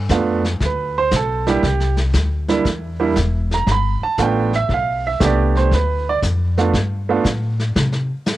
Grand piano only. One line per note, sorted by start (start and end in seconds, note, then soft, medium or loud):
0.11 0.41 A3 medium
0.11 0.42 B3 medium
0.11 0.42 D4 medium
0.11 0.42 F4 medium
0.65 0.97 B4 medium
0.98 1.13 C5 loud
1.16 1.48 A4 medium
1.47 1.61 G3 medium
1.47 1.62 A#3 medium
1.47 1.62 D4 medium
1.47 1.62 E4 medium
1.47 1.96 G4 medium
2.49 2.64 G3 medium
2.49 2.64 A#3 medium
2.49 2.64 D4 medium
2.49 2.64 E4 medium
3.00 3.15 G3 medium
3.00 3.15 A#3 medium
3.00 3.15 D4 medium
3.00 3.15 E4 medium
3.54 3.66 A#5 medium
3.67 3.71 A#5 medium
3.72 4.03 B5 medium
4.03 4.19 A5 medium
4.19 4.50 A3 medium
4.19 4.50 B3 medium
4.19 4.50 D4 medium
4.19 4.50 F4 medium
4.19 4.54 G5 medium
4.56 4.70 E5 medium
4.74 5.05 F5 medium
5.07 5.22 E5 medium
5.20 5.72 A3 medium
5.20 5.72 B3 medium
5.20 5.72 D4 medium
5.20 5.72 G4 medium
5.25 5.56 D5 medium
5.57 5.72 C5 medium
5.75 6.07 B4 medium
6.09 6.18 D5 medium
6.58 6.72 A3 medium
6.58 6.73 B3 medium
6.58 6.73 D4 medium
6.58 6.73 F4 medium
7.09 7.24 A3 medium
7.09 7.24 B3 medium
7.09 7.24 D4 medium
7.09 7.24 F4 medium